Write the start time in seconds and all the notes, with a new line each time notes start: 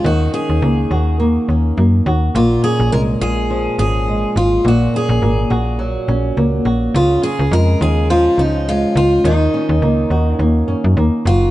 Already playing: G#3 C#4 F4
0.04 D#2 D#3 F#4
0.33 C#4 G#4
0.49 D#2
0.62 C#2 A#3
0.91 D#2 F#4
1.20 A#3
1.49 D#2 C#4
1.77 F#2 A#3
2.06 D#2 F#4
2.35 A#1 A#2 F4
2.64 C#4 G#4
2.80 A#1
2.92 C2 G#3 A#4
3.21 A#1 F4 G#4
3.50 F3
3.78 G#1 C#4 G#4
4.08 G#3
4.36 G#1 F4
4.65 A#1 A#2 F#4
4.94 C#4 G#4
5.09 A#1
5.22 G#1 A#3
5.50 A#1 F#4
5.79 F#3
6.08 A#1 C#4
6.37 C#2 A#3
6.65 A#1 F#4
6.94 C#2 C#3 F4
7.23 C#4 G#4
7.39 C#2
7.51 F2 G#3 A#4
7.81 D#2 F4 G#4
8.10 F3 F4
8.38 C#2 C#4 D#4
8.68 G#3 F4
8.95 C#2 F4
9.24 D#2 D#3 D#4
9.54 C#4
9.69 D#2
9.82 C#2 A#3
10.10 D#2 F#4
10.36 D#2 A#3 C#4
10.68 F#2 C#4
10.84 F#2
10.97 D#2 A#3
11.25 F#1 F4 F#4